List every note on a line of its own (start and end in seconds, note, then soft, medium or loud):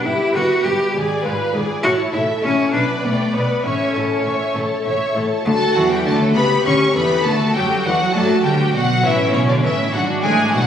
0.04 0.13 G1 medium
0.04 0.31 G2 soft
0.04 0.13 G2 medium
0.04 0.34 E4 medium
0.04 0.32 G4 soft
0.04 0.33 B4 soft
0.04 0.32 G5 soft
0.34 0.43 G1 soft
0.34 0.42 G2 soft
0.34 0.61 G2 soft
0.34 0.90 B3 soft
0.34 0.90 E4 soft
0.34 0.66 F#4 medium
0.34 0.64 G4 soft
0.34 0.64 B4 soft
0.34 0.64 E5 soft
0.63 0.72 G1 soft
0.63 0.91 G2 soft
0.63 0.72 G2 medium
0.63 0.93 G4 soft
0.63 0.94 G4 medium
0.63 0.94 B4 soft
0.63 0.94 G5 soft
0.93 1.02 G#1 medium
0.93 1.20 G#2 soft
0.93 1.02 G#2 medium
0.93 1.21 G#4 soft
0.93 1.22 D5 soft
0.93 1.21 G#5 soft
1.23 1.32 G#1 medium
1.23 1.32 G#2 medium
1.23 1.50 G#2 soft
1.23 1.79 B3 soft
1.23 1.79 D4 soft
1.23 1.80 F4 soft
1.23 1.53 B4 soft
1.23 1.54 B4 soft
1.23 1.53 F5 soft
1.53 1.61 G#1 soft
1.53 1.61 G#2 medium
1.53 1.80 G#2 soft
1.53 1.83 G#4 soft
1.53 1.83 D5 soft
1.53 1.83 G#5 soft
1.83 1.91 A1 medium
1.83 1.91 A2 medium
1.83 2.10 A2 soft
1.83 2.11 E4 medium
1.83 1.91 F#4 medium
1.83 2.11 C#5 medium
1.83 2.11 A5 medium
2.13 2.22 A1 medium
2.13 2.21 A2 medium
2.13 2.40 A2 soft
2.13 2.69 A3 soft
2.13 2.69 C#4 soft
2.13 2.21 E4 medium
2.13 2.70 E4 soft
2.13 2.43 A4 soft
2.13 2.43 E5 soft
2.13 2.44 E5 medium
2.43 2.51 A1 medium
2.43 2.51 A2 medium
2.43 2.70 A2 soft
2.43 2.72 C#4 medium
2.43 2.73 E4 soft
2.43 2.73 C#5 medium
2.43 2.73 A5 soft
2.72 2.81 B1 medium
2.72 3.00 B2 soft
2.72 2.81 B2 medium
2.72 2.81 D4 medium
2.72 3.01 B4 soft
2.72 3.01 D5 soft
2.72 3.01 B5 medium
3.03 3.11 B1 medium
3.03 3.30 B2 soft
3.03 3.11 B2 medium
3.03 3.35 A3 medium
3.03 3.60 D4 soft
3.03 3.60 G4 soft
3.03 3.33 B4 soft
3.03 3.34 D5 soft
3.03 3.34 G5 soft
3.33 3.41 B1 medium
3.33 3.41 B2 soft
3.33 3.61 B2 soft
3.33 3.65 B3 medium
3.33 3.64 B4 soft
3.33 3.64 D5 soft
3.33 3.64 B5 soft
3.63 3.72 A1 medium
3.63 3.91 A2 soft
3.63 3.72 A2 medium
3.63 4.55 C#4 medium
3.63 3.92 C#5 soft
3.63 3.92 E5 soft
3.63 3.92 C#6 soft
3.94 4.02 A1 soft
3.94 4.02 A2 soft
3.94 4.22 A2 soft
3.94 4.81 A3 soft
3.94 4.81 E4 soft
3.94 4.24 A4 soft
3.94 4.25 C#5 soft
3.94 4.24 A5 soft
4.24 4.33 A1 soft
4.24 4.33 A2 soft
4.24 4.52 A2 soft
4.24 4.55 C#5 soft
4.24 4.55 E5 soft
4.24 4.54 C#6 soft
4.55 4.63 A1 soft
4.55 4.82 A2 soft
4.55 4.63 A2 soft
4.55 4.85 A4 soft
4.55 4.85 C#5 soft
4.55 4.85 A5 soft
4.85 4.93 A1 soft
4.85 5.12 A2 soft
4.85 4.93 A2 soft
4.85 5.41 A3 soft
4.85 5.42 E4 soft
4.85 5.13 C#5 soft
4.85 5.13 E5 soft
4.85 5.13 C#6 soft
5.15 5.24 A1 soft
5.15 5.42 A2 soft
5.15 5.24 A2 soft
5.15 5.45 A4 soft
5.15 5.46 C#5 soft
5.15 5.43 A5 medium
5.45 5.54 D2 medium
5.45 5.73 D3 medium
5.45 5.54 D3 medium
5.45 5.53 A3 medium
5.45 6.31 F#4 medium
5.45 5.74 A4 medium
5.45 5.73 A5 loud
5.61 5.85 F#4 medium
5.75 6.05 E2 medium
5.75 6.03 E3 medium
5.75 6.05 E3 medium
5.75 5.93 F#3 medium
5.75 5.90 F#4 medium
5.75 6.00 A4 medium
5.75 5.90 F#5 medium
5.91 6.05 G3 medium
5.91 6.15 F#4 soft
5.91 6.06 G4 medium
5.91 6.06 G5 medium
6.06 6.36 D2 medium
6.06 6.36 D3 medium
6.06 6.33 D3 medium
6.06 6.37 A3 medium
6.06 6.35 A4 medium
6.06 6.21 D5 soft
6.06 6.14 A5 medium
6.21 6.36 C#5 soft
6.35 6.44 C#2 medium
6.35 6.44 C#3 medium
6.35 6.63 C#3 medium
6.35 6.64 B3 medium
6.35 7.25 G4 medium
6.35 6.44 B4 medium
6.35 6.65 B5 loud
6.51 6.74 E4 medium
6.65 6.73 D2 medium
6.65 6.92 D3 medium
6.65 6.74 D3 medium
6.65 6.94 C#4 medium
6.65 6.89 G4 soft
6.65 6.74 C#5 medium
6.65 6.94 C#6 loud
6.81 7.04 E4 soft
6.94 7.24 E2 medium
6.94 7.22 E3 medium
6.94 7.25 E3 medium
6.94 7.26 B3 medium
6.94 7.19 A4 medium
6.94 7.24 B4 medium
6.94 7.24 B5 loud
7.10 7.25 G4 soft
7.25 7.33 D2 medium
7.25 7.52 D3 medium
7.25 7.33 D3 medium
7.25 7.56 A3 medium
7.25 8.13 F#4 medium
7.25 7.55 A4 medium
7.25 7.54 A5 loud
7.40 7.64 F#4 medium
7.54 7.84 F#2 medium
7.54 7.84 F#3 medium
7.54 7.82 F#3 medium
7.54 7.86 G3 medium
7.54 7.84 G4 medium
7.54 7.79 A4 medium
7.54 7.84 G5 medium
7.70 7.94 F#4 medium
7.84 7.93 E2 medium
7.84 8.11 E3 medium
7.84 7.93 E3 medium
7.84 8.16 F#3 medium
7.84 8.14 F#4 medium
7.84 8.00 D5 medium
7.84 8.13 F#5 loud
8.00 8.15 C#5 soft
8.14 8.43 F#2 medium
8.14 8.43 F#3 medium
8.14 8.41 F#3 medium
8.14 8.45 A3 medium
8.14 9.01 F#4 medium
8.14 8.44 A4 medium
8.14 8.38 D5 medium
8.14 8.44 A5 medium
8.29 8.53 F#4 medium
8.44 8.73 D2 medium
8.44 8.73 D3 medium
8.44 8.71 D3 medium
8.44 8.73 G3 medium
8.44 8.73 G4 medium
8.44 8.59 G4 soft
8.44 8.74 G5 medium
8.59 8.83 F#4 soft
8.74 9.03 B1 medium
8.74 9.03 B2 medium
8.74 9.01 B2 medium
8.74 9.05 F#3 medium
8.74 8.98 D4 medium
8.74 8.82 F#4 medium
8.74 9.03 F#5 loud
8.89 9.04 F#4 medium
9.03 9.33 A1 medium
9.03 9.30 A2 medium
9.03 9.33 A2 medium
9.03 9.34 E3 medium
9.03 9.92 C#4 medium
9.03 9.33 E4 medium
9.03 9.33 E5 loud
9.19 9.42 C#4 medium
9.33 9.62 B1 medium
9.33 9.60 B2 medium
9.33 9.62 B2 medium
9.33 9.48 C#3 medium
9.33 9.48 C#4 medium
9.33 9.57 E4 medium
9.33 9.39 C#5 medium
9.48 9.62 D3 medium
9.48 9.72 C#4 medium
9.48 9.63 D4 medium
9.48 9.54 D5 medium
9.63 9.92 A1 medium
9.63 9.92 A2 medium
9.63 9.90 A2 medium
9.63 9.71 E3 medium
9.63 9.92 E4 medium
9.63 9.87 A4 medium
9.63 9.92 E5 medium
9.78 9.92 G4 soft
9.92 10.00 G#1 medium
9.92 10.00 G#2 medium
9.92 10.19 G#2 medium
9.92 10.24 F#3 medium
9.92 10.67 D4 medium
9.92 10.22 F#4 medium
9.92 10.01 F#5 medium
10.07 10.31 D4 medium
10.22 10.51 A1 medium
10.22 10.49 A2 medium
10.22 10.51 A2 medium
10.22 10.53 G#3 medium
10.22 10.46 E4 medium
10.22 10.51 G#4 medium
10.22 10.51 G#5 loud
10.38 10.61 D4 medium
10.51 10.67 B1 medium
10.51 10.67 B2 medium
10.51 10.67 F#3 medium
10.51 10.67 F#4 medium
10.51 10.67 B4 medium
10.51 10.67 F#5 loud